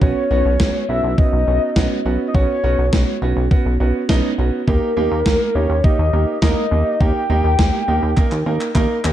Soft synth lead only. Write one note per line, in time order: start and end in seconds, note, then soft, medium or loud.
0.02 0.85 C#5 loud
0.89 1.19 E5 loud
1.18 2.05 D#5 loud
2.28 2.36 D#5 medium
2.34 3.22 C#5 loud
4.68 5.57 A#4 medium
5.55 5.84 C#5 medium
5.84 6.38 D#5 loud
6.42 7.02 D#5 loud
7.01 8.75 G5 loud